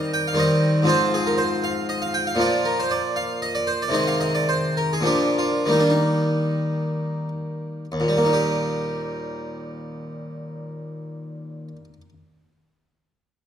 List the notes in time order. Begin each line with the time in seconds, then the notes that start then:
Already playing: D#3 G3 C4 D#4
0.14 G5
0.28 F5
0.33 D#3 G3 C4
0.38 D#4 D#5
0.82 G#2 F3 C4
0.87 F4 C5
1.14 G#4
1.27 A#4
1.38 C5
1.64 F5
1.89 D#5
2.02 F5
2.14 G5
2.27 F5
2.35 A#2 F3 A#3
2.40 F4 D5
2.65 A#4
2.80 C5
2.91 D5
3.16 F5
3.42 D#5
3.55 D5
3.67 C5
3.82 D5
3.88 C3 D#3 G#3
3.93 C4 D#5
4.07 F5
4.21 D#5
4.35 D5
4.49 C5
4.77 A#4
4.93 G#4
5.01 A#2 F3 A#3
5.05 D4 G4
5.38 F4
5.66 D#3 G3 A#3
5.72 D#4
5.80 D4
5.90 D#4
7.92 D#2
8.00 A#2
8.08 G3
8.17 A#3
8.25 D#4
8.33 G4